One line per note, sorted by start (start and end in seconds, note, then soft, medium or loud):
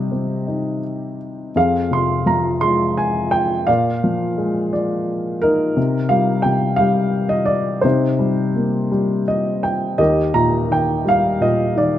0.00 1.51 C3 medium
0.00 1.15 G3 soft
0.00 0.80 G4 soft
0.00 0.81 D#5 medium
0.12 1.51 C4 soft
0.47 1.52 D#4 soft
1.56 3.64 F2 medium
1.56 2.59 G#4 medium
1.56 1.93 F5 medium
1.91 3.29 C3 soft
1.91 2.29 C6 medium
2.26 3.64 F3 soft
2.26 2.63 A#5 medium
2.61 3.65 G#3 soft
2.61 2.98 C6 medium
2.98 3.34 G#5 medium
3.31 3.68 G5 medium
3.67 5.73 A#2 medium
3.67 4.71 D5 medium
3.67 5.47 F5 medium
4.04 5.39 F3 soft
4.37 5.73 G#3 soft
4.73 5.74 D5 medium
5.42 6.42 D#4 medium
5.42 6.13 A#4 medium
5.77 6.44 C3 medium
6.09 6.79 G3 medium
6.09 6.46 F5 medium
6.42 7.80 C3 soft
6.42 6.79 G5 medium
6.76 7.81 G3 medium
6.76 7.32 F5 medium
7.29 7.49 D#5 medium
7.46 7.84 D5 medium
7.81 9.95 C3 medium
7.81 9.23 D#4 soft
7.81 9.22 C5 medium
8.19 8.90 G3 medium
8.55 9.95 A#3 soft
8.92 9.96 G3 medium
9.28 9.61 D#5 medium
9.63 9.96 G5 medium
9.98 11.99 D#2 medium
9.98 11.02 G4 medium
9.98 11.02 A#4 medium
9.98 10.35 D#5 medium
10.34 11.39 A#2 soft
10.34 10.71 A#5 medium
10.69 11.74 D#3 soft
10.69 11.07 G5 medium
11.05 11.99 G3 soft
11.05 11.43 F5 medium
11.41 11.99 A#2 soft
11.41 11.77 D#5 medium
11.76 11.99 D#3 soft
11.76 11.99 D5 medium